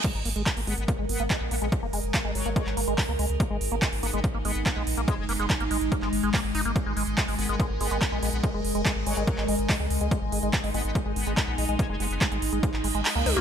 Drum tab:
CC |x---------------|----------------|----------------|----------------|
HH |x-oxxooxx-oxx-ox|x-oxx-oxx-oxo-ox|x-oxxooxx-o-x-ox|x-oxxxoxx-oxo-ox|
CP |----x-------x---|----x----x--x---|----x-------x---|----x----x--x---|
T1 |----------------|----------------|----------------|----------------|
T2 |----------------|----------------|----------------|----------------|
BD |o---o---o---o---|o---o---o---o---|o---o---o---o---|o---o---o---o---|

CC |----------------|----------------|----------------|----------------|
HH |x-oxxooxx-oxx-ox|x-oxx-oxx-oxo-ox|x-oxxooxx-oxx-ox|x-oxxxoxx-oxo-o-|
CP |----x-------x---|----x----x--x---|----x-------x---|----x----x--x---|
T1 |----------------|----------------|----------------|--------------o-|
T2 |----------------|----------------|----------------|---------------o|
BD |o---o---o---o---|o---o---o---o---|o---o---o---o---|o---o---o-------|